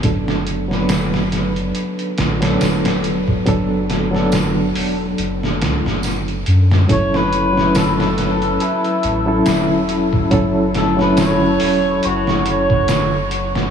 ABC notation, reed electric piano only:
X:1
M:4/4
L:1/16
Q:"Swing 16ths" 1/4=70
K:F#m
V:1 name="Reed electric piano"
[F,B,DA]3 [F,B,DB]8 [F,B,DA] z4 | [F,B,DA]3 [F,B,DA]12- [F,B,DA] | [F,CEA]3 [F,CEB]8 [F,CEA] z4 | [F,CEA]3 [F,CEA]12- [F,CEA] |]